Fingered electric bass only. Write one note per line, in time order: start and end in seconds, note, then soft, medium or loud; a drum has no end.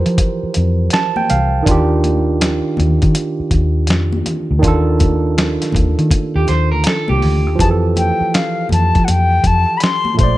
0.06 0.17 F3 medium
0.43 muted fingered electric bass stroke soft
0.57 0.87 F2 medium
1.31 1.61 C2 medium
1.67 2.60 D#2 loud
2.79 2.98 D#2 medium
3.03 3.14 D#3 medium
3.40 muted fingered electric bass stroke soft
3.51 3.90 D#2 medium
3.90 4.21 F2 medium
4.51 4.61 D2 medium
4.63 5.57 D#2 loud
5.75 5.94 D#2 medium
5.98 6.09 D#3 medium
6.35 6.46 D#2 medium
6.49 6.73 D#2 medium
6.73 6.84 D2 medium
7.10 7.21 C2 medium
7.23 7.47 D2 medium
7.47 7.58 D#2 medium
7.60 8.10 F2 medium
8.21 muted fingered electric bass stroke soft
8.71 8.91 F2 medium
8.96 9.06 F3 medium
9.08 9.39 F2 medium
9.44 9.64 F2 medium
10.20 10.38 A#1 medium